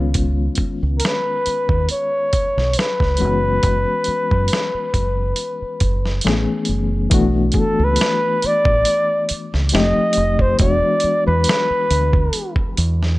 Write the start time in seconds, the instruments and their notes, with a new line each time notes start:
Already playing: fingered electric bass C#2, reed electric piano D#3 G#3 B3 C#4 F4
0.14 kick, closed hi-hat
0.55 kick, closed hi-hat
0.83 fingered electric bass C#2
0.98 flugelhorn A#4, closed hi-hat
1.05 flugelhorn B4, snare
1.46 muted fingered electric bass stroke, closed hi-hat
1.69 fingered electric bass D#2, kick
1.89 flugelhorn C#5, closed hi-hat
2.33 muted fingered electric bass stroke, kick, closed hi-hat
2.57 fingered electric bass B1, snare
2.73 closed hi-hat
2.78 flugelhorn B4, snare
3.00 fingered electric bass C#2, kick, snare
3.17 fingered electric bass F#1, reed electric piano E3 G#3 A#3 C#4, closed hi-hat
3.22 reed electric piano F#4
3.26 reed electric piano B3
3.63 fingered electric bass F#1, kick, closed hi-hat
4.04 muted fingered electric bass stroke, closed hi-hat
4.31 fingered electric bass F#2, kick
4.48 closed hi-hat
4.53 snare
4.74 muted fingered electric bass stroke
4.94 fingered electric bass F#1, kick, closed hi-hat
5.36 closed hi-hat
5.62 muted fingered electric bass stroke
5.80 fingered electric bass F#1, kick, closed hi-hat
6.06 snare
6.21 reed electric piano E3 A3, closed hi-hat
6.25 fingered electric bass A1, reed electric piano B3 C#4 G#4, snare
6.65 fingered electric bass F#1, closed hi-hat
7.10 fingered electric bass B1, reed electric piano E3 A3 B3 D4 F#4, kick, closed hi-hat
7.52 flugelhorn G#4, kick, closed hi-hat
7.59 flugelhorn A4
7.79 fingered electric bass C#2
7.84 flugelhorn B4
7.96 closed hi-hat
8.01 snare
8.42 flugelhorn D5, muted fingered electric bass stroke, closed hi-hat
8.65 fingered electric bass A1, kick
8.85 closed hi-hat
9.29 muted fingered electric bass stroke, closed hi-hat
9.54 fingered electric bass C#2, snare
9.69 reed electric piano F3 G#3, closed hi-hat
9.73 fingered electric bass F1, reed electric piano C4 D#4 G4, flugelhorn D#5, snare
9.79 reed electric piano A3
9.98 muted fingered electric bass stroke
10.13 closed hi-hat
10.17 fingered electric bass F1
10.39 flugelhorn C5, kick
10.58 fingered electric bass E1, reed electric piano E3 G#3 B3 D4 F#4, flugelhorn D5, kick, closed hi-hat
11.00 muted fingered electric bass stroke, closed hi-hat
11.26 fingered electric bass E2, flugelhorn B4
11.44 closed hi-hat
11.49 snare
11.70 muted fingered electric bass stroke
11.91 fingered electric bass D2, closed hi-hat
12.13 kick
12.33 closed hi-hat
12.56 muted fingered electric bass stroke, kick
12.77 fingered electric bass E2, closed hi-hat
13.03 snare